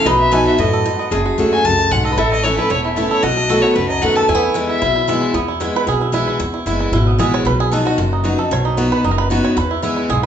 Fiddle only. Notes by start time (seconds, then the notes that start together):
0.05 D#5
0.19 E5
0.33 G#5
0.47 E5
0.59 D#5
1.52 G#5
1.65 A5
1.91 F#5
2.05 D#5
2.18 E5
2.31 D#5
2.44 C#5
2.58 B4
2.70 C#5
2.84 E4
2.96 A4
3.11 C#5
3.22 D#5
3.62 C#5
3.75 B4
3.89 D#5
4.02 F#5
4.16 A5
4.29 G#5
4.68 E5